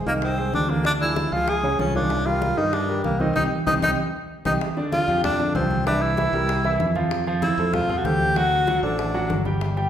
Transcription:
0.06 fingered electric bass C2, grand piano D#3 D#4 D#5, tenor saxophone A#3, high conga
0.22 tenor saxophone C4, high bongo, high conga
0.38 grand piano G#3 G#4 C5, high bongo, high conga
0.53 fingered electric bass D2, tenor saxophone D4, high bongo, low bongo, high conga
0.69 grand piano D3 D4 D5, tenor saxophone A#3, high bongo, high conga
0.84 grand piano D3 D4 D5, tenor saxophone D4, high bongo, high conga
1.00 grand piano F3 D4 G#4, tenor saxophone E4, high bongo, high conga
1.16 high bongo, high conga
1.32 fingered electric bass C#2, grand piano F3 F4 G#4, tenor saxophone F4, high conga
1.48 tenor saxophone G#4, high bongo, high conga
1.63 grand piano C#3 C#4 C#5, high bongo, high conga
1.79 fingered electric bass C2, grand piano F3 F4 G#4, tenor saxophone C#4, high bongo, low bongo, high conga
1.95 grand piano D#3 F4 C#5, tenor saxophone D4, high bongo, high conga
2.10 high bongo, high conga
2.26 grand piano G3 G4 A#4, tenor saxophone F4, high bongo, high conga
2.42 grand piano G3 G4 A#4, high bongo, high conga
2.57 fingered electric bass G2, grand piano D#3 D#4 D#5, tenor saxophone D#4
2.73 tenor saxophone D4, high bongo, high conga
2.89 grand piano G3 G4 A#4, high bongo, high conga
3.04 fingered electric bass C2, tenor saxophone A#3, high bongo, low bongo, high conga
3.20 grand piano D#3 D#4 D#5, tenor saxophone C4, high bongo, high conga
3.36 fingered electric bass C2, grand piano C4 D#4 G4, tenor saxophone D#4, low bongo, high conga
3.67 fingered electric bass C2, grand piano C4 D#4 G4, tenor saxophone D#4, low bongo, high conga
3.82 fingered electric bass C2, grand piano C4 D#4 G4, tenor saxophone D#4, low bongo, high conga
4.45 fingered electric bass C2, grand piano C4 D#4 G4, tenor saxophone D#4, low bongo, high conga
4.61 high bongo, high conga
4.77 grand piano D3 D4 D5, high bongo, high conga
4.92 tenor saxophone F4, high bongo, high conga
5.08 fingered electric bass F2, grand piano F3 F4 G4, high conga
5.24 tenor saxophone D4, high bongo, high conga, low conga
5.39 grand piano D3 D4 D5, high bongo, high conga
5.55 fingered electric bass C2, grand piano F3 F4 G4, tenor saxophone C4, high bongo, low bongo, high conga
5.71 high bongo, high conga
5.86 grand piano E3 E4 E5, tenor saxophone D4, high bongo, high conga
6.02 tenor saxophone E4, high bongo, high conga
6.17 grand piano E3 E4 E5, high bongo, high conga
6.33 fingered electric bass C2, grand piano G3 G4 A#4, high conga
6.49 high bongo, high conga
6.64 grand piano E3 E4 E5, high bongo, high conga
6.80 fingered electric bass F2, high bongo, low bongo, high conga
6.95 grand piano F3 F4 F5, high bongo, high conga
7.11 high bongo, high conga
7.27 grand piano F3 F4 F5, high bongo, high conga
7.42 tenor saxophone E4, high bongo, high conga
7.58 fingered electric bass F2, grand piano A3 A4 C5, high conga
7.73 tenor saxophone F4, high bongo, high conga, low conga
7.89 grand piano F3 F4 F5, high bongo, high conga, low conga
7.97 tenor saxophone F#4
8.05 fingered electric bass D2, grand piano A3 A4 C5, tenor saxophone G4, high bongo, low bongo, high conga
8.20 high bongo, high conga
8.36 grand piano F#3 F#4 F#5, tenor saxophone F#4, high bongo, high conga
8.52 high bongo, high conga
8.67 grand piano F#3 F#4 F#5, high bongo, high conga
8.83 fingered electric bass A1, grand piano A3 A4 C5, tenor saxophone D4, high conga
8.99 high bongo, high conga
9.14 grand piano F#3 F#4 F#5, high bongo
9.30 fingered electric bass G1, high bongo, low bongo, high conga
9.45 grand piano G3 G4 G5, high bongo, high conga
9.61 high bongo, high conga
9.77 grand piano G3 G4 G5, high bongo, high conga

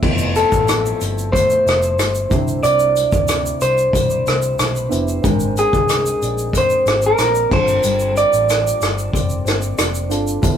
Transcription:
Already playing: nylon-string guitar F3 C4 F4
0.02 fingered electric bass F1, nylon-string guitar F3, synth keys A3 B3 E4 G4, kick, crash
0.18 shaker
0.36 nylon-string guitar C4, clean electric guitar A4, closed hi-hat, shaker
0.52 fingered electric bass A1, kick, shaker
0.68 nylon-string guitar E4, cross-stick, closed hi-hat, shaker
0.86 shaker
1.01 fingered electric bass G1, closed hi-hat, shaker
1.18 shaker
1.32 nylon-string guitar A3, clean electric guitar C5, kick, closed hi-hat, shaker
1.50 shaker
1.65 fingered electric bass F1, nylon-string guitar E4, cross-stick, closed hi-hat, shaker
1.82 shaker
1.98 fingered electric bass G1, cross-stick, closed hi-hat, shaker
2.15 shaker
2.29 fingered electric bass C2, nylon-string guitar C3, synth keys C4 D4 E4 G4, kick, closed hi-hat, shaker
2.48 shaker
2.63 fingered electric bass C2, nylon-string guitar C3, clean electric guitar D5, closed hi-hat, shaker
2.79 shaker
2.96 nylon-string guitar C4, closed hi-hat, shaker
3.12 fingered electric bass D2, kick, shaker
3.28 nylon-string guitar E4, cross-stick, closed hi-hat, shaker
3.46 shaker
3.61 fingered electric bass C2, clean electric guitar C5, closed hi-hat, shaker
3.78 shaker
3.93 fingered electric bass B1, nylon-string guitar G3, kick, closed hi-hat, shaker
4.10 shaker
4.27 fingered electric bass C2, nylon-string guitar E4, cross-stick, closed hi-hat, shaker
4.42 shaker
4.59 fingered electric bass B1, nylon-string guitar A4, cross-stick, closed hi-hat, shaker
4.75 nylon-string guitar B4, shaker
4.89 fingered electric bass F1, synth keys B3 D4 E4 G4, nylon-string guitar E4, closed hi-hat, shaker
5.08 shaker
5.22 fingered electric bass G#1, nylon-string guitar G#3, synth keys C4 D4 A#4 G5, kick, closed hi-hat, shaker
5.40 shaker
5.57 nylon-string guitar D#4, clean electric guitar G#4, closed hi-hat, shaker
5.73 fingered electric bass C2, kick, shaker
5.89 cross-stick, closed hi-hat, shaker
6.06 shaker
6.22 fingered electric bass A#1, nylon-string guitar D5, closed hi-hat, shaker
6.38 shaker
6.53 nylon-string guitar C4, kick, closed hi-hat, shaker
6.58 clean electric guitar C5
6.70 shaker
6.86 fingered electric bass G#1, nylon-string guitar G4, cross-stick, closed hi-hat, shaker
7.02 shaker
7.06 clean electric guitar A#4
7.18 fingered electric bass A#1, nylon-string guitar C5, cross-stick, closed hi-hat, shaker
7.34 nylon-string guitar D5, shaker
7.50 fingered electric bass G1, nylon-string guitar G3, synth keys C4 D4 F4 A4, clean electric guitar C5, kick, crash
7.68 shaker
7.83 fingered electric bass G1, nylon-string guitar G3, closed hi-hat, shaker
7.99 shaker
8.15 nylon-string guitar F4, clean electric guitar D5, closed hi-hat, shaker
8.33 fingered electric bass A1, shaker
8.47 nylon-string guitar C5, cross-stick, closed hi-hat, shaker
8.67 shaker
8.80 fingered electric bass G1, nylon-string guitar D5, cross-stick, closed hi-hat, shaker
8.98 shaker
9.12 fingered electric bass F1, nylon-string guitar C4, kick, closed hi-hat, shaker
9.30 shaker
9.45 fingered electric bass G1, nylon-string guitar C5, cross-stick, closed hi-hat, shaker
9.62 shaker
9.78 fingered electric bass F1, nylon-string guitar D5, cross-stick, closed hi-hat, shaker
9.95 shaker
10.09 fingered electric bass G1, synth keys C4 D4 F4 A4, nylon-string guitar C5, closed hi-hat, shaker
10.27 shaker
10.41 fingered electric bass F1, nylon-string guitar F3, synth keys B3 E4 G4 A4, kick, closed hi-hat, shaker

